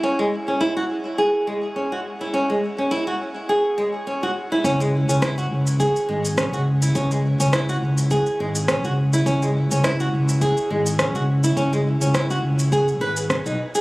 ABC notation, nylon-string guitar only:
X:1
M:4/4
L:1/16
Q:"Swing 16ths" 1/4=104
K:C#m
V:1 name="Nylon-string guitar"
C G, z C E F z2 G2 G, z C F z E | C G, z C E F z2 G2 G, z C F z E | C G, z C E F z2 G2 G, z C F z E | C G, z C E F z2 G2 G, z C F z E |
C G, z C E F z2 G2 G, z C F z E | C G, z C E F z2 G z B z2 D z G |]